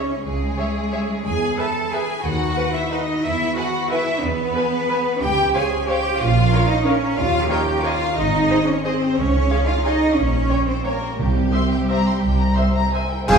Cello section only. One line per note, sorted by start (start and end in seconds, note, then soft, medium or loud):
0.00 0.25 C#4 medium
0.25 1.23 G#3 medium
1.25 1.58 G#4 medium
1.59 1.93 A4 medium
1.93 2.25 G#4 medium
2.25 2.74 F#4 medium
2.75 2.92 E4 medium
2.91 3.24 D#4 medium
3.23 3.55 E4 medium
3.56 3.90 F#4 medium
3.90 4.23 E4 loud
4.23 5.22 B3 loud
5.21 5.54 G4 loud
5.54 5.88 G#4 medium
5.87 6.19 G4 loud
6.20 6.70 F4 loud
6.70 6.86 D#4 loud
6.86 7.18 C#4 loud
7.18 7.44 F4 loud
7.44 7.51 G#4 medium
7.50 7.85 G4 medium
7.85 8.18 F4 loud
8.17 8.66 D#4 loud
8.67 8.85 C#4 medium
8.84 9.16 C4 loud
9.16 9.67 C#4 loud
9.67 9.84 F4 medium
9.84 10.16 D#4 medium
10.16 10.67 C#4 medium
10.67 10.85 C4 medium
10.85 11.19 A#3 medium
11.19 12.91 G3 medium
13.28 13.38 F2 medium